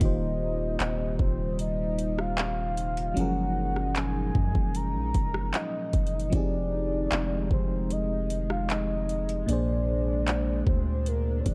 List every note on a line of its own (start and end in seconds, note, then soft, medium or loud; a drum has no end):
0.00 0.77 D#1 loud
0.00 3.13 C3 medium
0.00 3.12 D#3 medium
0.00 3.14 G3 medium
0.00 3.12 A#3 medium
0.00 9.44 D#4 medium
0.00 3.13 F4 medium
0.00 3.14 G4 medium
0.00 1.16 D#5 loud
0.00 kick loud
0.00 closed hi-hat medium
0.05 3.15 C5 medium
0.80 1.18 D#1 loud
0.80 clap loud
0.80 closed hi-hat medium
1.19 3.13 D#1 loud
1.19 1.57 C5 loud
1.19 kick medium
1.59 2.21 D#5 loud
1.59 closed hi-hat medium
1.99 closed hi-hat medium
2.19 2.39 F5 medium
2.19 cross-stick medium
2.38 3.20 F5 loud
2.38 clap loud
2.38 closed hi-hat medium
2.77 closed hi-hat medium
2.97 closed hi-hat medium
3.14 4.32 F#1 loud
3.14 6.30 A#2 medium
3.14 6.29 F3 medium
3.14 6.27 F#3 medium
3.14 11.54 G#3 medium
3.14 6.28 C#4 medium
3.14 closed hi-hat medium
3.19 6.30 G#4 medium
3.19 6.31 A#4 medium
3.19 3.99 F#5 loud
3.76 cross-stick medium
3.96 4.77 G#5 loud
3.96 clap loud
3.96 closed hi-hat medium
4.35 4.54 F#2 loud
4.35 kick medium
4.55 4.96 F#1 loud
4.55 kick medium
4.75 5.56 A#5 loud
4.75 closed hi-hat medium
4.95 5.14 A#1 loud
5.14 5.53 F#1 loud
5.14 kick medium
5.14 closed hi-hat medium
5.34 cross-stick medium
5.54 6.33 D#5 loud
5.54 clap loud
5.54 closed hi-hat medium
5.93 6.31 F#1 loud
5.93 kick loud
5.93 closed hi-hat medium
6.07 closed hi-hat medium
6.20 closed hi-hat medium
6.30 7.09 F1 loud
6.30 9.46 D#3 medium
6.30 9.43 F3 medium
6.30 9.44 C4 medium
6.30 9.45 D#4 medium
6.30 kick loud
6.30 closed hi-hat medium
6.34 9.46 G4 medium
6.34 9.46 G#4 medium
6.34 7.48 D5 loud
7.12 7.50 F1 loud
7.12 clap loud
7.12 closed hi-hat medium
7.51 9.44 F1 loud
7.51 7.93 C5 medium
7.51 kick medium
7.91 8.50 D#5 loud
7.91 closed hi-hat medium
8.30 closed hi-hat medium
8.50 8.72 F5 loud
8.50 cross-stick medium
8.70 9.49 D#5 loud
8.70 clap loud
8.70 closed hi-hat medium
9.09 closed hi-hat medium
9.29 closed hi-hat medium
9.46 10.63 A#1 loud
9.46 11.54 A#2 medium
9.46 11.54 C3 medium
9.46 11.54 A#3 medium
9.46 11.54 D4 medium
9.46 10.64 D5 loud
9.46 closed hi-hat medium
9.51 11.54 G#4 medium
9.51 11.54 C5 medium
10.27 clap loud
10.27 closed hi-hat medium
10.67 11.43 D2 loud
10.67 11.09 C5 medium
10.67 kick medium
11.06 11.42 A#4 medium
11.06 closed hi-hat medium
11.40 11.49 C#5 medium
11.46 11.54 A#1 loud
11.46 11.54 D5 loud
11.46 kick medium
11.46 closed hi-hat medium